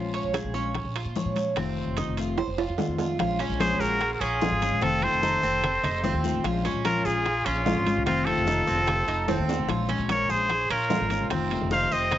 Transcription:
Already playing: A#1 F3 G#3 C#4 F4
0.13 C#5, high bongo, high conga, high timbale
0.24 A#1
0.34 G#4, high bongo, high conga, high timbale, short guiro
0.44 A#1
0.54 G#3 C#4 F4, high conga, short guiro
0.74 muted steel-string acoustic guitar stroke, high bongo, high conga, high timbale, long guiro
0.84 A#1
0.96 F4, high bongo, high conga, high timbale
1.05 A#2
1.16 F3 G#3 C#4 F4 C#5, high bongo, low bongo, high conga, short guiro
1.25 A#2
1.36 high bongo, high conga, high timbale, short guiro
1.56 F1 C3 D#3 A3 C4 F4, high bongo, high conga, high timbale, long guiro
1.77 high bongo, high conga
1.88 F1
1.97 D#4, high bongo, high conga, high timbale, short guiro
2.07 F1
2.17 D#3 A3 C4 F4, high conga, high timbale, short guiro
2.38 C5, muted steel-string acoustic guitar stroke, high bongo, high conga, high timbale, long guiro
2.48 F1
2.58 F4, high bongo, high conga, high timbale
2.69 F2
2.78 D#3 A3 C4 F4, high bongo, low bongo, high conga, low timbale, short guiro
2.88 F2
2.98 F4, high bongo, high conga, low timbale, short guiro
3.18 A#1 F3 G#3 C#4 F4, high bongo, high timbale, long guiro
3.39 G#3 C#4 F4, high conga, high timbale
3.49 A#1
3.59 F3 G#3 C#4 F4 G#4 C5, high bongo, high conga, high timbale, short guiro
3.79 A#1 F#4 G#4 A#4, high bongo, high conga, short guiro
4.01 muted steel-string acoustic guitar stroke, high bongo, high conga, high timbale, long guiro
4.14 F#4 A#4
4.20 A#1 C#4 F4 G#4, high bongo, high conga, high timbale
4.41 F3 G#3 C#4 F4, high bongo, low bongo, high conga, low timbale, short guiro
4.51 G#1
4.61 G#3 C#4 F4, high bongo, high conga, high timbale, short guiro
4.72 A#1
4.81 F1 C3 D#3 A3 C4 F4 A4, high bongo, high timbale, long guiro
5.02 D#3 A3 C4 F4 A4 C5, high conga, high timbale
5.12 F1
5.23 D#3 A3 C4 D#4 F4, high bongo, high conga, short guiro
5.43 F1 C4, high bongo, high conga, short guiro
5.63 muted steel-string acoustic guitar stroke, high bongo, high conga, low conga, high timbale, long guiro
5.83 F1 D#4, high bongo, high conga, low conga, high timbale
6.03 D#3 A3 C4 F4, high bongo, low bongo, high conga, short guiro
6.14 D#2
6.23 D#3 A3 C4 F4, high bongo, short guiro
6.34 A1
6.44 A#1 F3 G#3 C#4 F4, high bongo, high conga, high timbale, long guiro
6.64 G#3 C#4 F4, high conga, high timbale
6.74 A#1
6.84 F3 G#3 C#4 F4 A#4, high bongo, high conga, high timbale, short guiro
7.04 A#1 F4 G#4, high bongo, short guiro
7.25 muted steel-string acoustic guitar stroke, high bongo, high conga, high timbale, long guiro
7.45 A#1 C#4 F4, high bongo, high conga, high timbale
7.65 F3 G#3 C#4 F4, high bongo, low bongo, high conga, low timbale, short guiro
7.76 G#1
7.85 G#3 C#4 F4, high bongo, high conga, high timbale, short guiro
7.97 C2
8.06 F1 C3 D#3 A3 C4 F4, high bongo, high conga, high timbale, long guiro
8.26 D#3 A3 C4 F4 A4, high conga, high timbale
8.38 F1
8.47 D#3 A3 C4 D#4 F4, high bongo, high conga, short guiro
8.67 F1 C4, high bongo, high conga, short guiro
8.88 muted steel-string acoustic guitar stroke, high bongo, high conga, low conga, high timbale, long guiro
9.08 F1 D#4, high bongo, high conga, high timbale
9.28 D#3 A3 C4 F4, high bongo, low bongo, high conga, high timbale, short guiro
9.38 D#2
9.48 D#3 A3 C4 F4, high bongo, low timbale, short guiro
9.58 F1
9.68 A#1 F3 G#3 C#4 F4, high bongo, high timbale, long guiro
9.89 G#3 C#4 F4, high conga, high timbale
9.99 A#1
10.09 F3 G#3 C#4 F4 A#4 C#5, high bongo, high conga, high timbale, short guiro
10.29 A#1 G#4 C5, high bongo, high conga, short guiro
10.50 muted steel-string acoustic guitar stroke, high bongo, high conga, high timbale, long guiro
10.69 A#1 C#4 F4 A#4, high bongo, high conga, high timbale
10.90 F3 G#3 C#4 F4, high bongo, low bongo, high conga, low timbale, short guiro
11.00 G#1
11.10 G#3 C#4 F4, high bongo, high conga, high timbale, short guiro
11.21 C2
11.30 F1 C3 D#3 A3 C4 F4, high bongo, high timbale, long guiro
11.51 D#3 A3 C4 F4, high conga, high timbale
11.61 F1
11.71 D#3 A3 D#4 C5 F5, high bongo, high conga, short guiro
11.91 F1 C4 C5 D#5, high bongo, high conga, short guiro
12.12 muted steel-string acoustic guitar stroke, high bongo, high conga, low conga, high timbale, long guiro

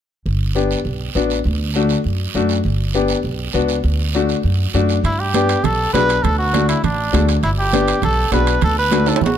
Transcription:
0.26 G1, long guiro
0.55 B3 D4 G4, short guiro
0.71 short guiro
0.85 B1, long guiro
1.15 A1 B3 D4 F#4, short guiro
1.30 short guiro
1.44 D2, long guiro
1.74 A3 D4 F#4, short guiro
1.89 short guiro
2.04 F#2, long guiro
2.35 F#2 A3 D4 F#4, short guiro
2.49 short guiro
2.64 G1, long guiro
2.94 B3 D4 G4, short guiro
3.08 short guiro
3.23 B1, long guiro
3.53 C#2 B3 D4 F#4, short guiro
3.68 short guiro
3.84 D2, long guiro
4.13 A3 D4 F#4, short guiro
4.29 short guiro
4.43 F#2, long guiro
4.74 F#2 A3 D4 F#4, short guiro
4.89 short guiro
5.04 G2 E4, high conga, high timbale, long guiro
5.20 G4
5.34 B3 D4 G4, high conga, high timbale, short guiro
5.49 high timbale, short guiro
5.64 B1 A4, high conga, low conga, high timbale, long guiro
5.93 B1 B3 D4 F#4 B4, high conga, high timbale, low timbale, short guiro
6.09 high timbale, short guiro
6.23 D2 A4, high conga, low conga, high timbale, long guiro
6.39 F#4
6.53 A3 D4 F#4, high conga, high timbale, short guiro
6.69 E4, high timbale, short guiro
6.84 A1 D4, high conga, low conga, high timbale, long guiro
7.13 D2 A3 D4 F#4, high conga, high timbale, low timbale, short guiro
7.28 high timbale, short guiro
7.43 G1 E4, high conga, high timbale, long guiro
7.59 G4
7.73 B3 D4 G4, high conga, high timbale, short guiro
7.88 high timbale, short guiro
8.02 B1 A4, high conga, low conga, high timbale, long guiro
8.32 B1 B3 D4 F#4 B4, high conga, high timbale, low timbale, short guiro
8.47 high timbale, short guiro
8.61 D2 A4, high conga, low conga, high timbale, long guiro
8.79 B4
8.91 A3 D4 F#4, high conga, high timbale, short guiro
9.06 A4, high timbale, short guiro
9.16 high timbale
9.21 A1 F#4, high conga, low conga, long guiro
9.26 low timbale

